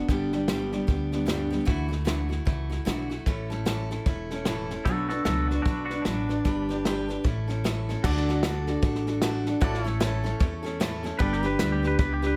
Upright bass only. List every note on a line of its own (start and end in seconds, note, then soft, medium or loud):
0.09 0.79 G1 medium
0.88 1.58 D2 medium
1.68 2.38 D2 medium
2.47 2.81 C#2 medium
2.86 3.20 B1 medium
3.26 3.97 A1 medium
4.06 4.76 E1 medium
4.85 5.21 B1 medium
5.25 5.59 C#2 medium
5.66 5.99 B1 medium
6.06 6.39 A1 medium
6.45 7.15 G1 medium
7.24 7.94 A1 medium
8.04 8.74 D2 medium
8.83 9.53 A1 medium
9.62 10.32 A1 medium
10.40 11.10 E2 medium
11.20 11.55 G1 loud
11.59 11.93 D2 medium
11.99 12.33 C#2 medium